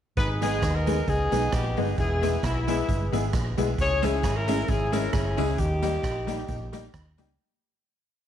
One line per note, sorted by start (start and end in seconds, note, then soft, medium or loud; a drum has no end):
0.17 0.64 G#1 loud
0.17 0.41 D#4 medium
0.17 0.41 G#4 medium
0.17 0.29 B4 loud
0.17 kick loud
0.17 closed hi-hat medium
0.41 0.53 G#3 medium
0.41 0.52 G#3 medium
0.41 1.06 B3 medium
0.41 0.53 B3 medium
0.41 0.52 B3 medium
0.41 0.74 D#4 medium
0.41 0.53 D#4 medium
0.41 0.52 D#4 medium
0.41 0.73 G#4 loud
0.41 0.54 G#4 medium
0.41 0.53 G#4 loud
0.41 closed hi-hat medium
0.62 1.01 D#2 loud
0.62 kick loud
0.62 cross-stick loud
0.62 closed hi-hat medium
0.75 1.07 D#4 medium
0.75 1.08 A#4 loud
0.86 0.97 G#3 medium
0.86 0.98 G#3 medium
0.86 0.97 B3 medium
0.86 0.98 B3 medium
0.86 0.97 D#4 medium
0.86 0.99 D#4 medium
0.86 0.98 G#4 loud
0.86 0.99 G#4 medium
0.86 closed hi-hat loud
1.08 1.28 C#2 medium
1.08 1.94 B3 medium
1.08 1.12 D#4 soft
1.08 1.94 D#4 medium
1.08 1.13 G#4 soft
1.08 1.53 G#4 loud
1.08 kick loud
1.08 closed hi-hat medium
1.31 1.50 B1 medium
1.31 1.42 G#3 medium
1.31 1.44 G#3 medium
1.31 1.42 B3 medium
1.31 1.44 B3 medium
1.31 1.43 D#4 medium
1.31 1.44 D#4 medium
1.31 1.43 G#4 loud
1.31 1.44 G#4 medium
1.31 closed hi-hat medium
1.52 1.74 A#1 medium
1.52 1.78 G4 medium
1.52 kick loud
1.52 cross-stick loud
1.52 closed hi-hat medium
1.77 1.95 G1 medium
1.77 1.87 G#3 medium
1.77 1.89 G#3 medium
1.77 1.88 B3 medium
1.77 1.89 B3 medium
1.77 1.88 D#4 medium
1.77 1.89 D#4 medium
1.77 1.88 G#4 medium
1.77 1.99 G#4 medium
1.77 1.90 G#4 medium
1.77 open hi-hat soft
1.98 2.36 E1 loud
1.98 2.68 B3 medium
1.98 2.44 E4 medium
1.98 2.41 G#4 medium
1.98 kick loud
1.98 closed hi-hat medium
2.22 2.32 G#3 medium
2.22 2.34 G#3 medium
2.22 2.33 B3 medium
2.22 2.34 B3 medium
2.22 2.33 E4 medium
2.22 2.35 E4 medium
2.22 2.33 G#4 loud
2.22 2.35 G#4 loud
2.22 closed hi-hat medium
2.43 2.81 B1 medium
2.43 2.68 E4 medium
2.43 kick loud
2.43 cross-stick loud
2.43 closed hi-hat medium
2.67 2.78 G#3 medium
2.67 2.79 G#3 medium
2.67 3.54 G#3 medium
2.67 2.78 B3 medium
2.67 2.79 B3 medium
2.67 3.54 B3 medium
2.67 2.78 E4 medium
2.67 2.80 E4 medium
2.67 3.10 E4 medium
2.67 2.78 G#4 loud
2.67 2.80 G#4 medium
2.67 closed hi-hat loud
2.88 3.09 G1 loud
2.88 2.93 E4 soft
2.88 2.93 G#4 soft
2.88 kick loud
2.88 closed hi-hat medium
3.12 3.30 G#1 medium
3.12 3.23 G#3 medium
3.12 3.24 G#3 medium
3.12 3.23 B3 medium
3.12 3.24 B3 medium
3.12 3.23 E4 medium
3.12 3.25 E4 medium
3.12 3.23 G#4 loud
3.12 3.25 G#4 loud
3.12 closed hi-hat medium
3.33 3.54 A#1 medium
3.33 kick loud
3.33 cross-stick loud
3.33 closed hi-hat medium
3.57 3.75 B1 medium
3.57 3.68 G#3 medium
3.57 3.69 G#3 medium
3.57 3.68 B3 medium
3.57 3.69 B3 medium
3.57 3.68 E4 medium
3.57 3.69 E4 medium
3.57 3.69 G#4 loud
3.57 3.70 G#4 medium
3.57 closed hi-hat medium
3.78 4.25 C#2 loud
3.78 4.02 E4 medium
3.78 4.02 G#4 medium
3.78 4.02 C#5 loud
3.78 kick loud
3.78 closed hi-hat medium
4.02 4.13 G#3 medium
4.02 4.14 G#3 medium
4.02 4.13 C#4 medium
4.02 4.14 C#4 medium
4.02 4.36 C#4 medium
4.02 4.36 E4 medium
4.02 4.13 E4 medium
4.02 4.15 E4 medium
4.02 4.13 G#4 loud
4.02 4.36 G#4 loud
4.02 4.15 G#4 medium
4.02 closed hi-hat medium
4.02 tambourine medium
4.23 4.62 G#1 medium
4.23 kick loud
4.23 cross-stick loud
4.23 closed hi-hat medium
4.36 4.68 C#4 medium
4.36 4.69 E4 medium
4.36 4.69 A#4 loud
4.47 4.58 G#3 medium
4.47 4.60 G#3 medium
4.47 4.58 C#4 medium
4.47 4.60 C#4 medium
4.47 4.58 E4 medium
4.47 4.60 E4 medium
4.47 4.59 G#4 loud
4.47 4.60 G#4 medium
4.47 closed hi-hat loud
4.47 tambourine medium
4.68 5.07 G#1 loud
4.68 5.13 C#4 medium
4.68 4.73 E4 soft
4.68 5.13 E4 medium
4.68 4.73 G#4 soft
4.68 4.94 G#4 medium
4.68 kick loud
4.68 closed hi-hat medium
4.92 5.03 G#3 medium
4.92 5.04 G#3 medium
4.92 5.03 C#4 medium
4.92 5.04 C#4 medium
4.92 5.03 E4 medium
4.92 5.05 E4 medium
4.92 5.04 G#4 loud
4.92 5.05 G#4 loud
4.92 5.14 A#4 medium
4.92 closed hi-hat medium
4.92 tambourine medium
5.13 5.34 G1 medium
5.13 5.56 C#4 medium
5.13 5.56 E4 medium
5.13 5.59 G#4 medium
5.13 kick loud
5.13 cross-stick loud
5.13 closed hi-hat medium
5.37 5.56 C#2 medium
5.37 5.48 G#3 medium
5.37 5.49 G#3 medium
5.37 5.49 C#4 medium
5.37 5.48 C#4 medium
5.37 5.48 E4 medium
5.37 5.49 E4 medium
5.37 5.50 G#4 medium
5.37 5.49 G#4 loud
5.37 open hi-hat medium
5.37 tambourine medium
5.58 5.97 D#2 loud
5.58 6.90 A#3 medium
5.58 6.90 D#4 medium
5.58 6.94 G4 loud
5.58 kick loud
5.58 closed hi-hat medium
5.82 5.94 G3 medium
5.82 5.93 G3 medium
5.82 5.94 A#3 medium
5.82 5.93 A#3 medium
5.82 5.95 D#4 medium
5.82 5.94 D#4 medium
5.82 5.95 G4 medium
5.82 5.94 G4 medium
5.82 closed hi-hat medium
5.82 tambourine medium
6.03 6.42 A#1 loud
6.03 kick loud
6.03 cross-stick loud
6.03 closed hi-hat medium
6.27 6.39 G3 medium
6.27 6.38 G3 medium
6.27 6.38 A#3 medium
6.27 6.39 A#3 medium
6.27 6.39 D#4 medium
6.27 6.39 G4 loud
6.27 6.40 G4 medium
6.27 closed hi-hat loud
6.27 tambourine medium
6.48 6.87 A#1 medium
6.48 6.54 D#4 soft
6.48 6.54 G4 soft
6.48 kick loud
6.48 closed hi-hat medium
6.72 6.84 G3 medium
6.72 6.85 A#3 medium
6.72 6.84 A#3 medium
6.72 6.84 D#4 medium
6.72 6.85 D#4 medium
6.72 6.85 G4 medium
6.72 6.84 G4 medium
6.72 closed hi-hat medium
6.72 tambourine medium
6.94 7.15 D#2 medium
6.94 kick loud
6.94 cross-stick loud
6.94 closed hi-hat medium
7.18 7.36 C#2 medium
7.18 7.29 G3 medium
7.18 7.30 G3 medium
7.18 7.29 A#3 medium
7.18 7.30 A#3 medium
7.18 7.29 D#4 medium
7.18 7.30 D#4 medium
7.18 7.29 G4 medium
7.18 7.30 G4 medium
7.18 closed hi-hat medium
7.18 tambourine medium